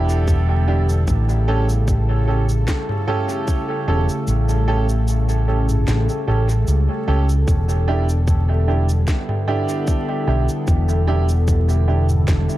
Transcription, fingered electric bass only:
Already playing: E1
1.08 A1
3.88 E1
4.28 A1
5.88 A1
6.28 A1
6.68 C#2
7.08 C#2
7.48 E1
10.28 B1
10.68 E1
12.28 E1

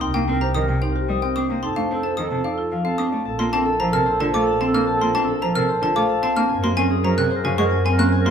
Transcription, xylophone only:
0.01 C6
0.14 G5
0.41 A#5
0.55 D#6
0.82 G5
1.22 G5
1.36 D#6
1.63 C6
1.76 F5
2.03 A5
2.17 D#6
2.44 F5
2.85 F5
2.98 D#6
3.39 C6
3.53 A5
3.80 A#5
3.93 F6
4.20 A5
4.34 D6
4.61 A5
4.75 F6
5.01 C6
5.15 A5
5.42 A#5
5.55 F6
5.83 A5
5.96 D6
6.23 A5
6.37 F6
6.64 C6
6.77 G#5
7.05 A#5
7.18 F#6
7.45 G#5
7.58 C#6
7.86 G#5
7.99 F#6
8.26 C6

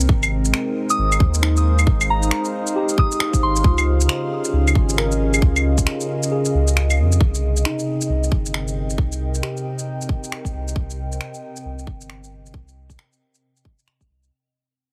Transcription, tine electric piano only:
Already playing: C4
1.42 D#4
2.76 G4
3.65 F4
4.98 A#4
6.32 G#4
7.66 D#4
9.43 G4

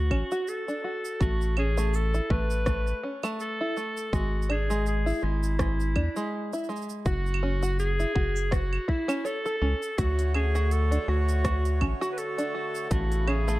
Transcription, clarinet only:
Already playing: F#4
0.48 A4
1.22 F#4
1.59 G#4
1.95 A4
2.31 B4
3.41 A4
4.15 F#4
4.51 G#4
4.88 G#4
5.24 E4
7.06 F#4
7.79 G#4
8.52 F#4
8.89 E4
9.26 A4
9.98 F#4
10.35 G#4
10.72 A4
11.08 F#4
12.12 B4
12.18 A4
12.91 F#4
13.28 G#4

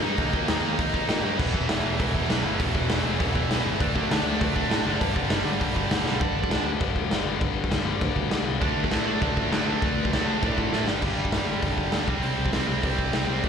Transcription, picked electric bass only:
0.03 G2
0.18 D#2
0.33 D#2
0.49 D#2
0.64 D#2
0.79 D#2
1.09 A#2
1.23 G2
1.39 E1
1.54 E1
1.68 E1
1.84 E1
2.00 E1
2.28 B1
2.44 G1
2.60 E1
2.75 E1
2.89 E1
3.04 E1
3.20 E1
3.49 B1
3.65 G1
3.80 D2
3.96 D2
4.11 D2
4.26 D2
4.41 D2
4.70 A2
4.85 F#1
5.01 G1
5.16 G1
5.29 G1
5.44 G1
5.61 G1
5.90 D2
6.05 B1
6.21 G1
6.35 G1
6.49 D2
6.81 G1
6.96 D2
7.09 G1
7.25 G1
7.41 G1
7.56 G1
7.71 G1
7.85 G1
8.02 D2
8.16 D2
8.30 D2
8.46 C2
8.62 D2
8.76 D2
8.91 A2
9.22 D2
9.37 A1
9.52 D2
9.66 D2
9.82 D2
9.98 D2
10.12 D2
10.28 D2
10.43 A2
10.58 A2
10.72 A2
10.87 G1
11.03 G1
11.17 G1
11.32 G1
11.48 G1
11.63 G1
11.78 G1
11.93 D2
12.08 C2
12.24 C2
12.39 C2
12.53 C2
12.68 C2
12.83 C2
12.98 C2
13.12 C2
13.27 C2
13.44 D2

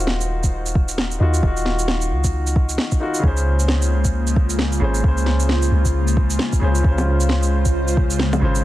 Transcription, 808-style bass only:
Already playing: D#1
1.20 D#2
1.43 D#1
2.11 C#2
3.23 C#2
4.81 G#1
5.04 C#2
5.71 C#2
6.62 C#2
6.84 C#2
8.42 G#1

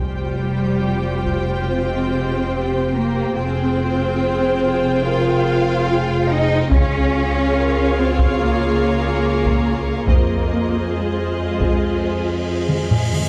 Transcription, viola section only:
Already playing: F4 G4
3.36 F4 G#4
6.72 F4 G#4
10.10 F4 G#4

